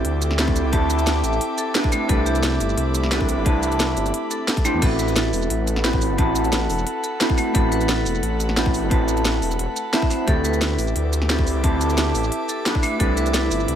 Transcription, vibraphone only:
Already playing: G4 A4
0.39 A4
0.73 A5
1.58 A4
1.92 A3
2.09 A4
2.26 G4
2.43 A4
3.12 A4
3.46 A5
4.31 A4
4.65 A3
4.82 A4
4.99 B4
5.16 A4
5.84 A4
6.18 A5
7.04 A4
7.38 A3
7.55 A4
7.72 B4
7.89 A4
8.57 A4
8.91 A5
9.76 A5
9.93 E5
10.10 C5
10.27 A4
10.44 B4
11.29 A4
11.64 A5
12.49 A4
12.83 A3
13.00 A4
13.17 B4
13.34 A4

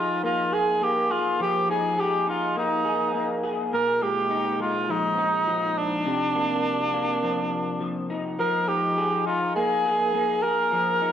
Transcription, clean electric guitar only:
Already playing: F3 D#4 G#4
0.23 A#3
0.52 G#4
0.81 A#3
1.11 G#4
1.40 F3
1.69 D#4
1.98 G#4
2.27 D#4
2.56 A#3
2.85 G#4
3.14 A#3
3.43 G#4
3.73 A#2
4.02 G#3
4.30 D#4
4.60 G#3
4.89 F3
5.18 D#4
5.48 F3
6.06 C3
6.35 A#3
6.93 A#3
7.23 F3
7.80 F3
8.10 D#4
8.39 F3
8.69 D#4
8.98 G#4
9.27 D#4
9.56 A#3
9.86 G#4
10.14 A#3
10.44 G#4
10.72 F3
11.02 D#4

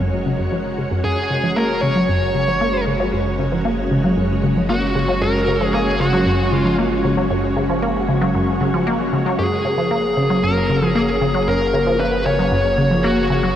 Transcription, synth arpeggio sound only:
0.00 F#2
0.26 C#3
0.39 F#2
0.52 F3
0.78 C#3
0.91 F#2
1.04 F#2
1.30 C#3
1.44 F3
1.57 A#3
1.83 C#3
1.96 F#3
2.09 F#2
2.35 C#3
2.48 F3
2.61 A#3
2.87 C#3
3.00 F#3
3.13 F#2
3.39 C#3
3.52 F3
3.65 A#3
3.91 C#3
4.04 F#3
4.17 F#2
4.43 C#3
4.56 F3
4.69 A#3
4.96 C#3
5.09 F#3
5.22 F#2
5.48 C#3
5.61 F3
5.74 A#3
6.00 C#3
6.13 F#3
6.26 F#2
6.52 C#3
6.65 F3
6.78 A#3
7.04 C#3
7.17 F#3
7.30 F#2
7.57 C#3
7.70 F3
7.83 A#3
8.09 C#3
8.22 F#3
8.35 F#2
8.61 C#3
8.74 F3
8.87 A#3
9.13 C#3
9.26 F#3
9.39 F#2
9.65 C#3
9.78 F3
9.91 A#3
10.17 C#3
10.30 F#3
10.43 F#2
10.69 C#3
10.82 F3
10.95 A#3
11.21 C#3
11.34 F#3
11.48 F#2
11.74 C#3
11.87 F3
12.00 A#3
12.26 C#3
12.39 F#3
12.52 F#2
12.78 C#3
12.91 F3
13.04 A#3
13.30 C#3
13.43 F#3

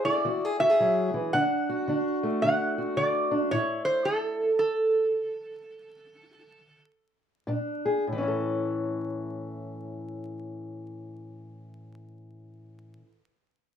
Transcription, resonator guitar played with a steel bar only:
0.05 D5
0.60 E5
1.33 F#5
2.42 F#5
2.97 D5
3.51 C#5
3.85 C5
4.05 A4
4.59 A4

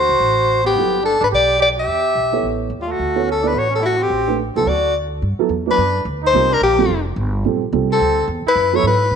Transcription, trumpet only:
Already playing: F#4
0.64 B3
1.03 D4
1.20 D4
1.31 G4
1.59 G4
1.76 G4
2.79 G3
2.87 A3
3.25 C#4
3.42 D4
3.55 F#4
3.70 C#4
3.78 G3 A3
3.97 C4
4.54 C4
4.65 F#4
5.67 D4
6.22 D#4
6.50 D4
6.63 A#3
7.92 C4
8.47 E4
8.75 E4
8.87 E4

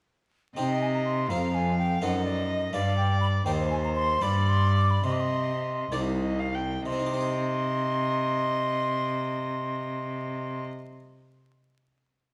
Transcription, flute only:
0.57 G5
0.82 G#5
0.94 A#5
1.05 C6
1.30 A#5
1.55 G#5
1.78 G5
2.02 F#5
2.25 D5
2.49 D#5
2.73 F5
2.97 G5
3.21 B5
3.45 G5
3.71 G#5
3.84 A#5
3.96 C6
4.22 B5
4.49 C6
4.76 D6
4.90 B5
5.04 C6
5.12 D6
5.20 C6
6.86 C6

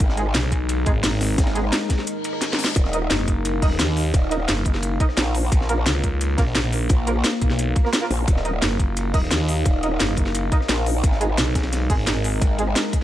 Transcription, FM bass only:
0.35 B1
0.86 G#1
1.04 G#1
3.10 F#1
3.62 D#1
3.79 D#2
4.48 F#1
5.86 C#2
6.38 A#1
6.55 A#1
7.42 B1
8.62 F#1
9.14 D#1
9.31 D#2
10.00 F#1
11.38 B1
11.90 G#1
12.07 G#1

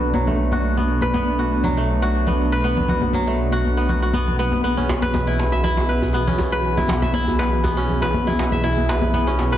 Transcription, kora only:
Already playing: F#3 A3 B3 F#4 B4
0.14 F#3
0.27 A3
0.52 F#4
0.77 B3
1.02 B4
1.14 B3
1.39 F#4
1.64 F#3
1.77 A3
2.02 F#4
2.27 B3
2.52 B4
2.64 B3
2.89 F#4
3.14 F#3
3.27 A3
3.52 F#4
3.77 B3
3.89 F#4
4.02 F#4
4.14 B3
4.39 B3
4.64 B3
4.77 C#4
5.02 B4
5.27 E4
5.52 E5
5.64 E4
5.89 B4
6.14 B3
6.27 C#4
6.52 B4
6.77 E4
7.02 E5
7.14 E4
7.39 B4
7.64 B3
7.77 C#4
8.02 B4
8.27 E4
8.52 E5
8.64 E4
8.89 B4
9.14 B3
9.27 C#4
9.52 B4

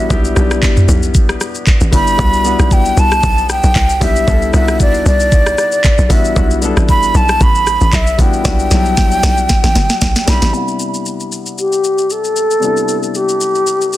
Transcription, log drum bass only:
0.10 B1
0.36 B1
0.89 B1
1.81 A1
1.93 G1
2.19 C2
2.59 B1
2.97 C2
3.23 B1
3.64 B1
3.76 C2
4.01 B1
4.28 C2
4.54 C2
5.06 C2
5.99 B1
6.10 A1
6.36 B1
6.77 A1
7.15 B1
7.41 A1
7.81 A1
7.93 B1
8.19 A1
8.45 B1
8.71 B1
9.23 B1
9.64 A1
9.75 G1
10.02 B1
10.28 B1
10.42 A1

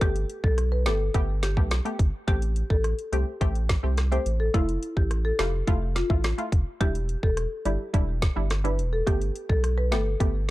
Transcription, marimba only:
0.01 G4
0.44 A4
0.72 B4
0.86 A4
1.43 G4
2.28 G4
2.70 A4
3.13 G4
4.12 C5
4.40 A4
4.54 E4
4.97 G4
5.25 A4
5.39 G4
5.96 F4
6.81 G4
7.23 A4
7.66 G4
8.65 B4
8.93 A4
9.07 G4
9.49 A4
9.78 B4
9.92 A4

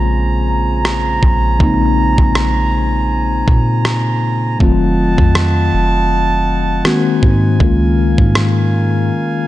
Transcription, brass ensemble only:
Already playing: C#3 C5 G#5 A#5
4.60 F4 D#5 F#5 A5
6.85 D#4 C5 G#5
7.61 C#3 A#4 F5

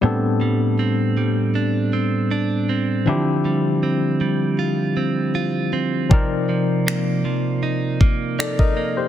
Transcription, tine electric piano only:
0.01 G3 B3 C4 D4 A4
3.05 E3 C4 D4 E4 G4
3.12 F3
6.09 F3 C4 D#4 D5
6.13 A#4
8.39 A4 D5
8.59 A#4 D#5
8.97 G4 C5

